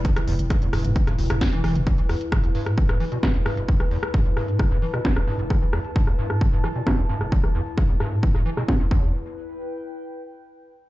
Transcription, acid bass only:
X:1
M:4/4
L:1/16
Q:1/4=132
K:Em
V:1 name="Acid bass" clef=bass
E,, E, E,, z G,, E,, G,, A,, G,, G,, D,, G,, E,, E, E, B,, | E,, E, E,, z G,, E,, G,, A,, G,, G,, E, B,, G,, E,, G,, E,,, | E,, E, E,, z G,, E,, G,, A,, G,, G,, E, B,, G,, E,, G,, E,,, | E,, E, E,, z G,, E,, G,, A,, G,, G,, E, B,, G,, E,, G,, E,,, |
E,, E, E,, z G,, E,, G,, A,, G,, G,, E, B,, G,, E,, E,,2 | z16 |]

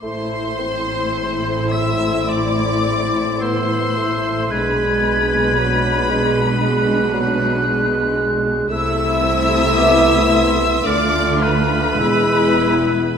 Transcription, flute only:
X:1
M:4/4
L:1/16
Q:1/4=55
K:Am
V:1 name="Flute"
c'12 e'4 | ^g'6- g' z ^f'8 | e'4 d'2 c'2 f'4 e'3 z |]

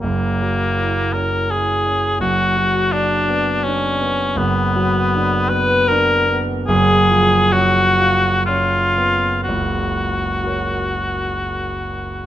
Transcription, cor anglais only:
X:1
M:3/4
L:1/8
Q:1/4=79
K:F#
V:1 name="Cor anglais"
A,3 A G2 | F2 =D2 C2 | B,3 B A z | G2 F2 E2 |
F6 |]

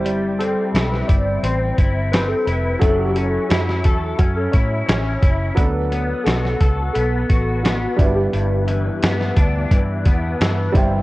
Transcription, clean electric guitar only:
X:1
M:4/4
L:1/8
Q:1/4=87
K:Glyd
V:1 name="Clean electric guitar"
G, =C E2 C E C E | F, C E A C E C E | z B, F A B, F B, G,, | G,, E, B, D E, B, E, G,, |]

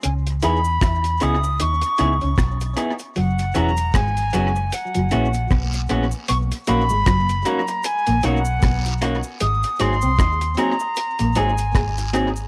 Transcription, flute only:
X:1
M:4/4
L:1/8
Q:"Swing 16ths" 1/4=77
K:B
V:1 name="Flute"
g b2 d' c'3 z | f a g2 f3 z | c' b2 a g f2 z | d' ^b2 a2 g2 z |]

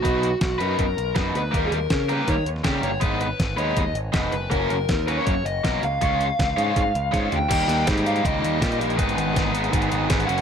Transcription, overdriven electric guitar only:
X:1
M:4/4
L:1/8
Q:1/4=161
K:D#m
V:1 name="Overdriven electric guitar"
[B,DFB] z2 [B,DFB] z2 [B,DFB] z | [=G,A,=GA] z2 [G,A,GA] z2 [G,A,GA] z | [G,B,DB] z2 [G,B,DB] z2 [G,B,DB] z | [A,CFA] z2 [A,CFA] z2 [A,CFA] z |
[G,CEc] z2 [G,CEc] z2 [G,CEc] z | [D,=G,A,D=G]2 [G,A,DG] [A,DG] [D,G,A,DG] [A,DG] [G,A,DG]2 | [G,,D,G,B,DG]2 [G,B,DG] [G,B,DG] [G,,D,G,B,DG] [G,B,DG] [G,B,DG] [F,,C,F,A,CF] |]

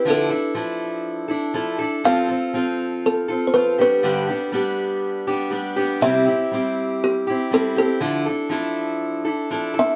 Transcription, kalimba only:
X:1
M:4/4
L:1/16
Q:1/4=120
K:Ddor
V:1 name="Kalimba"
A12 z4 | f8 A3- A/2 c/2 B2 B2- | B6 z8 z2 | e8 G4 A2 A2- |
A6 z8 e2 |]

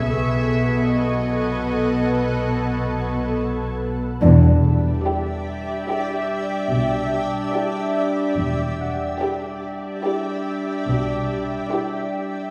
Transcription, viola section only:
X:1
M:5/4
L:1/16
Q:1/4=72
K:Bmix
V:1 name="Viola section"
[B,A]16- [B,A]3 z | [K:Em] z4 E4 E4 z4 E4 | z4 E4 E4 z4 E4 |]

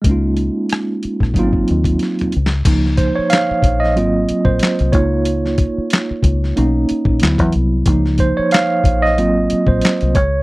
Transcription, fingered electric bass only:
X:1
M:4/4
L:1/16
Q:"Swing 16ths" 1/4=92
K:Db
V:1 name="Fingered electric bass" clef=bass
D,,3 z4 B,,, A,,,2 E,,2 z2 D,,2 | D,,3 z3 B,,,2 A,,,2 z B,,, z C,, D,,2- | D,,3 z3 D,,2 _C,,2 z B,,, =D,, =E,, =C,,2 | D,,3 z3 B,,,2 A,,,2 z B,,, z C,, D,,2 |]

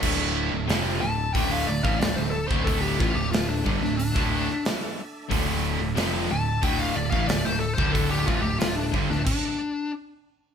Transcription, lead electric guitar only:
X:1
M:4/4
L:1/16
Q:1/4=91
K:Dm
V:1 name="Lead electric guitar"
z6 a2 g f d f d c A c | A G F G F D z D D4 z4 | z6 a2 g f d f d c A c | A G F G F D z D D4 z4 |]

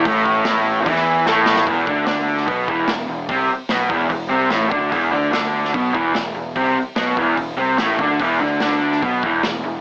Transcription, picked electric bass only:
X:1
M:4/4
L:1/8
Q:1/4=147
K:Clyd
V:1 name="Picked electric bass" clef=bass
A,,,4 E,,2 A,,,2 | E,,, D,, D,,2 B,,, E,,, E,,, E,,, | C,, z B,,, E,,, E,,, C,, A,,, D,, | E,,, D,, D,,2 B,,, E,,, E,,, E,,, |
C,, z B,,, E,,, E,,, C,, A,,, D,, | E,,, D,, D,,2 B,,, E,,, E,,, E,,, |]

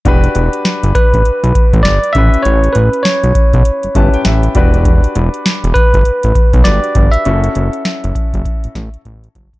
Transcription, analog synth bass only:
X:1
M:4/4
L:1/16
Q:"Swing 16ths" 1/4=100
K:Edor
V:1 name="Analog synth bass" clef=bass
E,,,2 E,,, z2 G,,, z A,,, z B,,, z A,,, G,,, z A,,, z | A,,,2 A,,, z2 B,,, z B,,, z G,,, G,,, z A,,,2 E,,,2- | E,,,2 E,,, z2 E,,, z G,,, z A,,, z B,,, G,,, z G,,, z | F,,,2 F,,, z2 F,,, z F,,, z A,,, A,,, z A,,,2 F,,, z |]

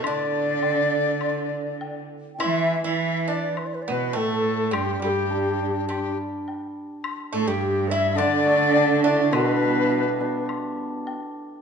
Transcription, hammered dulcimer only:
X:1
M:4/4
L:1/8
Q:1/4=103
K:none
V:1 name="Hammered dulcimer" clef=bass
A,,2 z6 | E,6 z2 | z G, D4 z2 | z4 D, A, D E |
B,, G, B, D4 z |]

